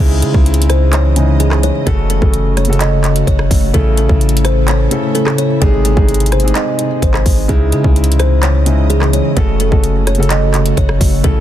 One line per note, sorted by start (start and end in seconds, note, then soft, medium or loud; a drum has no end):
0.00 0.24 C#2 loud
0.00 0.71 C#3 loud
0.00 5.58 C#3 medium
0.00 1.85 E3 medium
0.00 0.71 G#3 medium
0.00 0.71 D#4 medium
0.00 0.72 E4 loud
0.00 0.19 G#4 loud
0.00 1.85 D#5 loud
0.22 0.34 C#3 loud
0.22 0.43 G#4 medium
0.22 closed hi-hat medium
0.34 1.71 C#2 loud
0.34 kick loud
0.46 closed hi-hat medium
0.54 closed hi-hat medium
0.62 closed hi-hat medium
0.69 0.90 C5 medium
0.69 cross-stick medium
0.69 closed hi-hat medium
0.93 1.37 C#5 medium
0.93 clap loud
0.93 closed hi-hat medium
1.15 1.70 C#3 medium
1.15 1.70 G#3 medium
1.15 1.70 D#4 medium
1.15 1.71 E4 medium
1.15 closed hi-hat medium
1.40 1.60 G#4 medium
1.40 closed hi-hat medium
1.51 cross-stick loud
1.51 clap medium
1.63 1.84 C#5 medium
1.63 closed hi-hat medium
1.86 2.20 F#1 loud
1.86 2.13 C#3 medium
1.86 3.72 A3 medium
1.86 2.14 A3 medium
1.86 3.72 F#4 loud
1.86 2.14 F#4 medium
1.86 2.07 A4 loud
1.86 2.14 A4 loud
1.86 kick loud
1.86 closed hi-hat medium
2.10 2.31 A4 medium
2.10 closed hi-hat medium
2.21 3.23 F#1 loud
2.21 2.57 C#3 medium
2.21 2.58 A3 medium
2.21 2.58 F#4 medium
2.21 2.58 A4 medium
2.21 kick loud
2.34 closed hi-hat medium
2.57 2.78 C#5 medium
2.57 cross-stick medium
2.57 closed hi-hat medium
2.65 3.40 C#3 medium
2.65 3.40 A3 medium
2.65 closed hi-hat medium
2.69 3.41 F#4 medium
2.69 3.41 A4 medium
2.69 closed hi-hat soft
2.80 3.25 D#5 medium
2.80 clap loud
2.80 closed hi-hat medium
3.04 clap medium
3.04 closed hi-hat medium
3.16 closed hi-hat medium
3.27 3.50 F#1 loud
3.27 3.71 C#5 medium
3.27 kick loud
3.27 closed hi-hat medium
3.39 cross-stick loud
3.51 3.73 F#1 loud
3.51 kick loud
3.51 open hi-hat medium
3.73 4.08 A1 loud
3.73 4.46 C#3 loud
3.73 4.46 A3 medium
3.73 5.60 A3 medium
3.73 5.60 E4 loud
3.73 4.46 E4 medium
3.73 3.95 A4 loud
3.73 4.47 A4 loud
3.73 kick loud
3.73 closed hi-hat medium
3.97 4.18 A4 medium
3.97 closed hi-hat medium
4.09 4.88 A1 loud
4.09 kick loud
4.21 closed hi-hat medium
4.29 closed hi-hat medium
4.37 closed hi-hat medium
4.45 4.65 C5 medium
4.45 cross-stick medium
4.45 closed hi-hat medium
4.68 5.12 C#5 medium
4.68 clap loud
4.68 closed hi-hat medium
4.90 5.45 C#3 medium
4.90 5.45 A3 medium
4.90 5.45 E4 medium
4.90 5.46 A4 medium
4.90 closed hi-hat medium
5.15 5.35 A4 medium
5.15 closed hi-hat medium
5.27 cross-stick loud
5.27 clap medium
5.38 5.59 C#5 medium
5.38 closed hi-hat medium
5.61 5.95 G#1 loud
5.61 5.88 C3 loud
5.61 7.47 C3 medium
5.61 5.88 G#3 medium
5.61 7.47 G#3 medium
5.61 7.47 D#4 medium
5.61 5.89 D#4 medium
5.61 5.82 G#4 loud
5.61 5.89 G#4 loud
5.61 kick loud
5.61 closed hi-hat medium
5.85 6.06 G#4 medium
5.85 closed hi-hat medium
5.96 6.53 G#1 loud
5.96 6.32 C3 medium
5.96 6.32 G#3 medium
5.96 6.33 D#4 medium
5.96 6.33 G#4 medium
5.96 kick loud
6.08 closed hi-hat medium
6.14 closed hi-hat medium
6.20 closed hi-hat medium
6.26 closed hi-hat medium
6.32 6.52 C5 medium
6.32 cross-stick medium
6.32 closed hi-hat medium
6.40 7.15 C3 medium
6.40 7.15 G#3 medium
6.40 closed hi-hat medium
6.44 7.16 D#4 medium
6.44 7.16 G#4 medium
6.44 closed hi-hat medium
6.55 6.99 D#5 medium
6.55 clap loud
6.55 closed hi-hat medium
6.79 closed hi-hat medium
7.02 7.25 G#1 loud
7.02 7.46 C5 medium
7.02 kick medium
7.02 closed hi-hat medium
7.14 cross-stick loud
7.14 clap loud
7.26 7.48 G#1 loud
7.26 kick loud
7.26 open hi-hat medium
7.48 7.74 C#2 loud
7.48 8.21 C#3 loud
7.48 11.40 C#3 medium
7.48 9.35 E3 medium
7.48 8.21 G#3 medium
7.48 8.21 D#4 medium
7.48 8.21 E4 loud
7.48 7.70 G#4 loud
7.48 9.35 D#5 loud
7.48 kick loud
7.48 closed hi-hat medium
7.72 7.84 C#3 loud
7.72 7.93 G#4 medium
7.72 closed hi-hat medium
7.84 9.21 C#2 loud
7.84 kick loud
7.96 closed hi-hat medium
8.04 closed hi-hat medium
8.12 closed hi-hat medium
8.19 8.40 C5 medium
8.19 cross-stick medium
8.19 closed hi-hat medium
8.43 8.87 C#5 medium
8.43 clap loud
8.43 closed hi-hat medium
8.66 9.20 C#3 medium
8.66 9.20 G#3 medium
8.66 9.20 D#4 medium
8.66 9.21 E4 medium
8.66 closed hi-hat medium
8.90 9.10 G#4 medium
8.90 closed hi-hat medium
9.02 cross-stick loud
9.02 clap medium
9.13 9.34 C#5 medium
9.13 closed hi-hat medium
9.36 9.70 F#1 loud
9.36 9.63 C#3 medium
9.36 11.22 A3 medium
9.36 9.64 A3 medium
9.36 11.22 F#4 loud
9.36 9.64 F#4 medium
9.36 9.57 A4 loud
9.36 9.64 A4 loud
9.36 kick loud
9.36 closed hi-hat medium
9.60 9.81 A4 medium
9.60 closed hi-hat medium
9.71 10.73 F#1 loud
9.71 10.07 C#3 medium
9.71 10.08 A3 medium
9.71 10.08 F#4 medium
9.71 10.08 A4 medium
9.71 kick loud
9.84 closed hi-hat medium
10.07 10.27 C#5 medium
10.07 cross-stick medium
10.07 closed hi-hat medium
10.15 10.90 C#3 medium
10.15 10.90 A3 medium
10.15 closed hi-hat medium
10.19 10.91 F#4 medium
10.19 10.91 A4 medium
10.19 closed hi-hat soft
10.30 10.75 D#5 medium
10.30 clap loud
10.30 closed hi-hat medium
10.54 clap medium
10.54 closed hi-hat medium
10.66 closed hi-hat medium
10.77 11.00 F#1 loud
10.77 11.21 C#5 medium
10.77 kick loud
10.77 closed hi-hat medium
10.89 cross-stick loud
11.01 11.23 F#1 loud
11.01 kick loud
11.01 open hi-hat medium
11.23 11.40 A1 loud
11.23 11.40 C#3 loud
11.23 11.40 A3 loud
11.23 11.40 E4 medium
11.23 11.40 A4 loud
11.23 kick loud
11.23 closed hi-hat medium